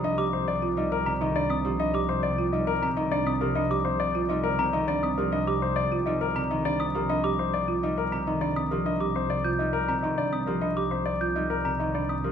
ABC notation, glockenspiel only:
X:1
M:3/4
L:1/16
Q:1/4=102
K:Cm
V:1 name="Glockenspiel"
z d' z4 z b z2 e' z | z d' z4 z b z2 e' z | z d' z4 z b z2 e' z | z d' z4 z b z2 e' z |
z d' z4 z b z2 e' z | z d' z2 g' z2 b z2 e' z | z d' z2 g' z2 b z2 e' z |]